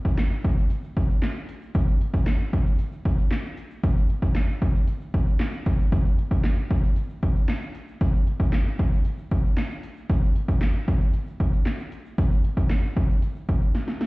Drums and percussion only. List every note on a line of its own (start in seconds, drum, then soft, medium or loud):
0.05 kick medium
0.05 shaker medium
0.18 snare loud
0.18 clap loud
0.18 closed hi-hat loud
0.18 shaker medium
0.31 shaker medium
0.44 kick loud
0.44 closed hi-hat medium
0.58 shaker medium
0.70 closed hi-hat medium
0.70 shaker medium
0.83 shaker soft
0.97 kick medium
0.97 closed hi-hat medium
1.09 shaker medium
1.22 snare medium
1.22 clap loud
1.22 closed hi-hat medium
1.22 shaker medium
1.36 shaker medium
1.49 closed hi-hat medium
1.49 shaker medium
1.62 shaker soft
1.75 kick loud
1.75 closed hi-hat medium
1.75 shaker medium
1.88 shaker soft
2.01 closed hi-hat medium
2.13 kick medium
2.13 shaker medium
2.26 snare loud
2.26 clap loud
2.26 closed hi-hat loud
2.26 shaker medium
2.40 shaker soft
2.53 kick loud
2.53 closed hi-hat medium
2.66 shaker medium
2.79 closed hi-hat loud
2.79 shaker medium
2.92 shaker soft
3.05 kick medium
3.05 closed hi-hat medium
3.18 shaker soft
3.31 snare loud
3.31 clap loud
3.31 closed hi-hat medium
3.31 shaker medium
3.44 shaker medium
3.57 closed hi-hat medium
3.57 shaker medium
3.71 shaker medium
3.83 kick loud
3.83 closed hi-hat medium
3.83 shaker medium
3.96 shaker soft
4.10 closed hi-hat medium
4.22 kick medium
4.22 shaker medium
4.35 snare medium
4.35 clap loud
4.35 closed hi-hat loud
4.35 shaker medium
4.49 shaker soft
4.62 kick loud
4.62 closed hi-hat medium
4.75 shaker medium
4.88 closed hi-hat medium
4.88 shaker medium
5.01 shaker soft
5.14 kick medium
5.14 closed hi-hat medium
5.27 shaker medium
5.40 snare medium
5.40 clap loud
5.40 closed hi-hat medium
5.40 shaker medium
5.53 shaker medium
5.66 kick loud
5.66 closed hi-hat medium
5.66 shaker medium
5.79 shaker medium
5.92 kick loud
5.92 closed hi-hat medium
5.92 shaker medium
6.05 shaker soft
6.18 closed hi-hat medium
6.31 kick loud
6.31 shaker medium
6.44 snare loud
6.44 clap loud
6.44 closed hi-hat loud
6.44 shaker medium
6.57 shaker soft
6.71 kick loud
6.71 closed hi-hat medium
6.84 shaker medium
6.96 closed hi-hat medium
6.96 shaker medium
7.10 shaker soft
7.23 kick medium
7.23 closed hi-hat medium
7.36 shaker medium
7.48 snare medium
7.48 clap loud
7.48 closed hi-hat medium
7.48 shaker medium
7.62 shaker medium
7.75 closed hi-hat medium
7.75 shaker medium
7.88 shaker soft
8.01 kick loud
8.01 closed hi-hat medium
8.01 shaker medium
8.14 shaker soft
8.27 closed hi-hat medium
8.40 kick loud
8.40 shaker medium
8.52 snare loud
8.52 clap loud
8.52 closed hi-hat loud
8.52 shaker medium
8.66 shaker medium
8.79 kick loud
8.79 closed hi-hat medium
8.92 shaker medium
9.05 closed hi-hat loud
9.05 shaker medium
9.18 shaker soft
9.31 kick medium
9.31 closed hi-hat medium
9.44 shaker medium
9.57 snare medium
9.57 clap loud
9.57 closed hi-hat medium
9.57 shaker medium
9.70 shaker medium
9.83 closed hi-hat medium
9.83 shaker medium
9.97 shaker medium
10.10 kick loud
10.10 closed hi-hat medium
10.10 shaker medium
10.23 shaker soft
10.36 closed hi-hat medium
10.48 kick medium
10.48 shaker medium
10.61 snare loud
10.61 clap loud
10.61 closed hi-hat loud
10.61 shaker medium
10.75 shaker soft
10.88 kick loud
10.88 closed hi-hat medium
11.01 shaker medium
11.14 closed hi-hat loud
11.14 shaker medium
11.27 shaker soft
11.40 kick medium
11.40 closed hi-hat medium
11.53 shaker medium
11.66 snare loud
11.66 clap loud
11.66 closed hi-hat loud
11.66 shaker medium
11.79 shaker medium
11.92 closed hi-hat medium
11.92 shaker medium
12.05 shaker medium
12.18 kick loud
12.18 closed hi-hat medium
12.18 shaker medium
12.31 shaker soft
12.44 closed hi-hat medium
12.57 kick loud
12.57 shaker medium
12.70 snare loud
12.70 clap loud
12.70 closed hi-hat loud
12.70 shaker medium
12.83 shaker medium
12.97 kick loud
12.97 closed hi-hat medium
13.10 shaker medium
13.22 closed hi-hat medium
13.22 shaker medium
13.36 shaker soft
13.49 kick medium
13.49 closed hi-hat medium
13.62 shaker medium
13.75 snare medium
13.75 closed hi-hat medium
13.75 shaker medium
13.88 snare medium
13.88 shaker medium
14.01 snare loud
14.01 closed hi-hat medium
14.01 shaker medium